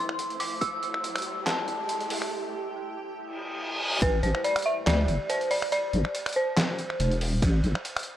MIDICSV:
0, 0, Header, 1, 7, 480
1, 0, Start_track
1, 0, Key_signature, 0, "minor"
1, 0, Tempo, 425532
1, 694, Time_signature, 4, 2, 24, 8
1, 9215, End_track
2, 0, Start_track
2, 0, Title_t, "Synth bell"
2, 0, Program_c, 0, 98
2, 0, Note_on_c, 0, 84, 95
2, 449, Note_on_c, 0, 86, 91
2, 467, Note_off_c, 0, 84, 0
2, 689, Note_on_c, 0, 88, 109
2, 699, Note_off_c, 0, 86, 0
2, 1649, Note_on_c, 0, 81, 82
2, 1680, Note_off_c, 0, 88, 0
2, 2566, Note_off_c, 0, 81, 0
2, 4534, Note_on_c, 0, 71, 108
2, 4771, Note_on_c, 0, 72, 93
2, 4781, Note_off_c, 0, 71, 0
2, 4996, Note_off_c, 0, 72, 0
2, 5013, Note_on_c, 0, 74, 104
2, 5252, Note_on_c, 0, 76, 112
2, 5261, Note_off_c, 0, 74, 0
2, 5491, Note_on_c, 0, 74, 102
2, 5500, Note_off_c, 0, 76, 0
2, 5974, Note_on_c, 0, 72, 98
2, 5987, Note_off_c, 0, 74, 0
2, 6212, Note_on_c, 0, 74, 101
2, 6221, Note_off_c, 0, 72, 0
2, 6441, Note_off_c, 0, 74, 0
2, 6454, Note_on_c, 0, 74, 115
2, 6900, Note_off_c, 0, 74, 0
2, 7176, Note_on_c, 0, 72, 90
2, 8090, Note_off_c, 0, 72, 0
2, 9215, End_track
3, 0, Start_track
3, 0, Title_t, "Ambient pad"
3, 0, Program_c, 1, 92
3, 0, Note_on_c, 1, 57, 78
3, 0, Note_on_c, 1, 64, 72
3, 0, Note_on_c, 1, 72, 88
3, 680, Note_off_c, 1, 72, 0
3, 693, Note_on_c, 1, 67, 87
3, 4488, Note_off_c, 1, 64, 0
3, 4489, Note_off_c, 1, 57, 0
3, 4520, Note_off_c, 1, 67, 0
3, 9215, End_track
4, 0, Start_track
4, 0, Title_t, "Wobble bass"
4, 0, Program_c, 2, 39
4, 4534, Note_on_c, 2, 33, 99
4, 4756, Note_off_c, 2, 33, 0
4, 4772, Note_on_c, 2, 33, 92
4, 4892, Note_off_c, 2, 33, 0
4, 5492, Note_on_c, 2, 38, 95
4, 5715, Note_off_c, 2, 38, 0
4, 5734, Note_on_c, 2, 31, 81
4, 5853, Note_off_c, 2, 31, 0
4, 6694, Note_on_c, 2, 33, 88
4, 6813, Note_off_c, 2, 33, 0
4, 7894, Note_on_c, 2, 28, 96
4, 8360, Note_off_c, 2, 28, 0
4, 8374, Note_on_c, 2, 33, 100
4, 8596, Note_off_c, 2, 33, 0
4, 8613, Note_on_c, 2, 33, 90
4, 8732, Note_off_c, 2, 33, 0
4, 9215, End_track
5, 0, Start_track
5, 0, Title_t, "Reverse cymbal"
5, 0, Program_c, 3, 119
5, 3574, Note_on_c, 3, 60, 78
5, 4534, Note_off_c, 3, 60, 0
5, 9215, End_track
6, 0, Start_track
6, 0, Title_t, "Riser"
6, 0, Program_c, 4, 103
6, 0, Note_on_c, 4, 60, 82
6, 2614, Note_off_c, 4, 60, 0
6, 9215, End_track
7, 0, Start_track
7, 0, Title_t, "Drums"
7, 103, Note_on_c, 9, 26, 53
7, 213, Note_on_c, 9, 42, 80
7, 215, Note_off_c, 9, 26, 0
7, 326, Note_off_c, 9, 42, 0
7, 343, Note_on_c, 9, 42, 39
7, 452, Note_on_c, 9, 46, 99
7, 455, Note_off_c, 9, 42, 0
7, 565, Note_off_c, 9, 46, 0
7, 693, Note_on_c, 9, 42, 79
7, 694, Note_on_c, 9, 36, 115
7, 806, Note_off_c, 9, 42, 0
7, 807, Note_off_c, 9, 36, 0
7, 933, Note_on_c, 9, 42, 55
7, 1046, Note_off_c, 9, 42, 0
7, 1063, Note_on_c, 9, 26, 51
7, 1174, Note_on_c, 9, 42, 82
7, 1175, Note_off_c, 9, 26, 0
7, 1287, Note_off_c, 9, 42, 0
7, 1304, Note_on_c, 9, 26, 75
7, 1304, Note_on_c, 9, 42, 50
7, 1334, Note_off_c, 9, 42, 0
7, 1334, Note_on_c, 9, 42, 65
7, 1376, Note_off_c, 9, 42, 0
7, 1376, Note_on_c, 9, 42, 79
7, 1417, Note_off_c, 9, 26, 0
7, 1489, Note_off_c, 9, 42, 0
7, 1654, Note_on_c, 9, 38, 111
7, 1654, Note_on_c, 9, 39, 87
7, 1654, Note_on_c, 9, 42, 81
7, 1766, Note_off_c, 9, 38, 0
7, 1766, Note_off_c, 9, 39, 0
7, 1766, Note_off_c, 9, 42, 0
7, 1893, Note_on_c, 9, 42, 53
7, 2006, Note_off_c, 9, 42, 0
7, 2132, Note_on_c, 9, 42, 80
7, 2245, Note_off_c, 9, 42, 0
7, 2262, Note_on_c, 9, 42, 39
7, 2372, Note_on_c, 9, 46, 103
7, 2375, Note_off_c, 9, 42, 0
7, 2485, Note_off_c, 9, 46, 0
7, 2502, Note_on_c, 9, 26, 51
7, 2615, Note_off_c, 9, 26, 0
7, 4534, Note_on_c, 9, 36, 124
7, 4534, Note_on_c, 9, 42, 85
7, 4534, Note_on_c, 9, 51, 62
7, 4647, Note_off_c, 9, 36, 0
7, 4647, Note_off_c, 9, 42, 0
7, 4647, Note_off_c, 9, 51, 0
7, 4773, Note_on_c, 9, 42, 57
7, 4886, Note_off_c, 9, 42, 0
7, 4903, Note_on_c, 9, 26, 51
7, 5013, Note_on_c, 9, 42, 83
7, 5013, Note_on_c, 9, 51, 45
7, 5016, Note_off_c, 9, 26, 0
7, 5126, Note_off_c, 9, 42, 0
7, 5126, Note_off_c, 9, 51, 0
7, 5143, Note_on_c, 9, 26, 77
7, 5143, Note_on_c, 9, 42, 52
7, 5174, Note_off_c, 9, 42, 0
7, 5174, Note_on_c, 9, 42, 66
7, 5216, Note_off_c, 9, 42, 0
7, 5216, Note_on_c, 9, 42, 82
7, 5256, Note_off_c, 9, 26, 0
7, 5329, Note_off_c, 9, 42, 0
7, 5493, Note_on_c, 9, 38, 123
7, 5493, Note_on_c, 9, 39, 96
7, 5493, Note_on_c, 9, 42, 87
7, 5493, Note_on_c, 9, 51, 64
7, 5606, Note_off_c, 9, 38, 0
7, 5606, Note_off_c, 9, 39, 0
7, 5606, Note_off_c, 9, 42, 0
7, 5606, Note_off_c, 9, 51, 0
7, 5733, Note_on_c, 9, 42, 55
7, 5846, Note_off_c, 9, 42, 0
7, 5974, Note_on_c, 9, 42, 83
7, 5974, Note_on_c, 9, 51, 44
7, 6087, Note_off_c, 9, 42, 0
7, 6087, Note_off_c, 9, 51, 0
7, 6103, Note_on_c, 9, 42, 38
7, 6213, Note_on_c, 9, 46, 96
7, 6216, Note_off_c, 9, 42, 0
7, 6326, Note_off_c, 9, 46, 0
7, 6344, Note_on_c, 9, 26, 52
7, 6454, Note_on_c, 9, 42, 78
7, 6454, Note_on_c, 9, 51, 62
7, 6456, Note_off_c, 9, 26, 0
7, 6567, Note_off_c, 9, 42, 0
7, 6567, Note_off_c, 9, 51, 0
7, 6693, Note_on_c, 9, 42, 56
7, 6806, Note_off_c, 9, 42, 0
7, 6823, Note_on_c, 9, 26, 54
7, 6933, Note_on_c, 9, 42, 79
7, 6933, Note_on_c, 9, 51, 43
7, 6936, Note_off_c, 9, 26, 0
7, 7046, Note_off_c, 9, 42, 0
7, 7046, Note_off_c, 9, 51, 0
7, 7064, Note_on_c, 9, 26, 77
7, 7064, Note_on_c, 9, 42, 49
7, 7093, Note_off_c, 9, 42, 0
7, 7093, Note_on_c, 9, 42, 62
7, 7136, Note_off_c, 9, 42, 0
7, 7136, Note_on_c, 9, 42, 80
7, 7176, Note_off_c, 9, 26, 0
7, 7249, Note_off_c, 9, 42, 0
7, 7413, Note_on_c, 9, 38, 123
7, 7413, Note_on_c, 9, 39, 95
7, 7413, Note_on_c, 9, 42, 84
7, 7413, Note_on_c, 9, 51, 64
7, 7526, Note_off_c, 9, 38, 0
7, 7526, Note_off_c, 9, 39, 0
7, 7526, Note_off_c, 9, 42, 0
7, 7526, Note_off_c, 9, 51, 0
7, 7654, Note_on_c, 9, 42, 54
7, 7767, Note_off_c, 9, 42, 0
7, 7784, Note_on_c, 9, 26, 54
7, 7895, Note_on_c, 9, 42, 81
7, 7895, Note_on_c, 9, 51, 46
7, 7897, Note_off_c, 9, 26, 0
7, 8008, Note_off_c, 9, 42, 0
7, 8008, Note_off_c, 9, 51, 0
7, 8025, Note_on_c, 9, 42, 41
7, 8135, Note_on_c, 9, 46, 92
7, 8138, Note_off_c, 9, 42, 0
7, 8248, Note_off_c, 9, 46, 0
7, 8374, Note_on_c, 9, 36, 127
7, 8374, Note_on_c, 9, 42, 76
7, 8374, Note_on_c, 9, 51, 65
7, 8487, Note_off_c, 9, 36, 0
7, 8487, Note_off_c, 9, 42, 0
7, 8487, Note_off_c, 9, 51, 0
7, 8615, Note_on_c, 9, 42, 52
7, 8728, Note_off_c, 9, 42, 0
7, 8745, Note_on_c, 9, 26, 58
7, 8854, Note_on_c, 9, 42, 79
7, 8854, Note_on_c, 9, 51, 44
7, 8858, Note_off_c, 9, 26, 0
7, 8967, Note_off_c, 9, 42, 0
7, 8967, Note_off_c, 9, 51, 0
7, 8985, Note_on_c, 9, 26, 80
7, 8985, Note_on_c, 9, 42, 48
7, 9015, Note_off_c, 9, 42, 0
7, 9015, Note_on_c, 9, 42, 63
7, 9058, Note_off_c, 9, 42, 0
7, 9058, Note_on_c, 9, 42, 80
7, 9098, Note_off_c, 9, 26, 0
7, 9171, Note_off_c, 9, 42, 0
7, 9215, End_track
0, 0, End_of_file